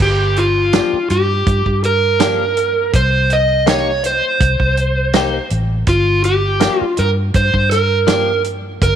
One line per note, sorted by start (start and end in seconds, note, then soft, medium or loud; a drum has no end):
0.00 0.79 G1 medium
0.00 0.39 G4 medium
0.00 kick loud
0.00 crash medium
0.36 1.11 F4 medium
0.36 closed hi-hat medium
0.73 0.96 F3 medium
0.73 0.96 A#3 medium
0.73 0.97 D4 medium
0.73 0.97 G4 medium
0.73 snare loud
0.73 closed hi-hat medium
0.93 muted fingered electric bass stroke soft
1.10 1.42 G2 medium
1.10 1.85 G4 medium
1.10 closed hi-hat medium
1.47 1.63 G2 loud
1.47 kick loud
1.47 closed hi-hat medium
1.66 2.95 G2 medium
1.66 kick medium
1.84 2.95 A#4 medium
1.84 closed hi-hat medium
2.20 2.43 F3 medium
2.20 2.43 A#3 medium
2.20 2.44 D4 medium
2.20 2.44 G4 medium
2.20 snare loud
2.20 closed hi-hat medium
2.57 closed hi-hat medium
2.93 4.20 C2 medium
2.93 3.32 C5 medium
2.93 kick loud
2.93 closed hi-hat medium
3.30 3.69 D#5 loud
3.30 closed hi-hat medium
3.66 3.90 A#3 medium
3.66 3.90 D#4 medium
3.66 3.91 G4 medium
3.66 4.03 C#5 medium
3.66 snare loud
3.66 closed hi-hat medium
4.04 5.48 C5 medium
4.04 closed hi-hat medium
4.40 4.57 C2 loud
4.40 kick loud
4.40 closed hi-hat medium
4.60 5.38 C2 medium
4.60 kick medium
4.77 closed hi-hat medium
5.13 5.37 A#3 medium
5.13 5.37 D#4 medium
5.13 5.38 G4 loud
5.13 snare loud
5.13 closed hi-hat medium
5.50 5.83 A1 medium
5.50 closed hi-hat medium
5.87 6.67 G1 loud
5.87 6.25 F4 medium
5.87 kick loud
5.87 closed hi-hat medium
6.24 6.81 G4 medium
6.24 closed hi-hat medium
6.60 6.83 F3 medium
6.60 6.84 A#3 medium
6.60 6.84 D4 medium
6.60 6.85 G4 medium
6.60 snare medium
6.60 closed hi-hat medium
6.81 7.01 F4 medium
6.81 muted fingered electric bass stroke soft
6.97 7.30 G2 medium
6.97 7.09 A#4 medium
6.97 closed hi-hat medium
7.34 7.51 G2 loud
7.34 7.72 C5 medium
7.34 kick medium
7.34 closed hi-hat medium
7.54 8.83 G2 medium
7.54 kick medium
7.71 8.41 A#4 medium
7.71 snare soft
7.71 closed hi-hat medium
8.07 8.30 F3 medium
8.07 8.31 A#3 medium
8.07 8.31 D4 medium
8.07 8.32 G4 medium
8.07 snare loud
8.07 closed hi-hat medium
8.44 closed hi-hat medium
8.81 8.96 G1 loud
8.81 8.96 A#4 loud
8.81 kick loud
8.81 closed hi-hat medium